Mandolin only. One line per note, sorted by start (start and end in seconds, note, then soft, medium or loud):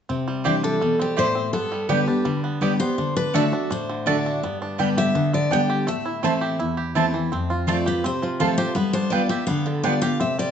0.44 0.54 C4 medium
0.44 0.54 E4 medium
0.44 0.55 D5 medium
0.44 0.55 G5 medium
1.16 1.26 C4 medium
1.16 1.27 E4 medium
1.16 1.27 D5 loud
1.16 1.27 G5 medium
1.89 1.99 B3 medium
1.89 1.99 G4 loud
1.89 1.99 D5 loud
1.89 1.99 G5 loud
2.62 2.71 B3 medium
2.62 2.71 G4 medium
2.62 2.72 D5 medium
2.62 2.72 G5 medium
3.34 3.43 A3 medium
3.34 3.44 F#4 medium
3.34 3.44 D5 loud
3.34 3.44 A5 loud
4.06 4.16 A3 medium
4.06 4.16 F#4 medium
4.06 4.16 D5 medium
4.06 4.16 A5 medium
4.78 4.88 B3 medium
4.78 4.88 G4 loud
4.78 4.88 D5 medium
4.78 4.88 G5 loud
5.51 5.60 B3 medium
5.51 5.61 G4 medium
5.51 5.61 D5 medium
5.51 5.61 G5 medium
6.23 6.32 C4 medium
6.23 6.33 E4 medium
6.23 6.33 C5 medium
6.23 6.33 A5 loud
6.95 7.05 C4 medium
6.95 7.05 E4 medium
6.95 7.05 C5 medium
6.95 7.05 A5 medium
7.67 7.77 C4 medium
7.67 7.77 F4 medium
7.67 7.77 C5 medium
7.67 7.77 A5 medium
8.40 8.49 C4 medium
8.40 8.49 F4 medium
8.40 8.49 C5 medium
8.40 8.50 A5 loud
9.12 9.21 B3 medium
9.12 9.21 F4 medium
9.12 9.21 B4 medium
9.12 9.22 G5 loud
9.83 9.93 B3 medium
9.83 9.93 F4 medium
9.83 9.93 B4 medium
9.83 9.94 G5 loud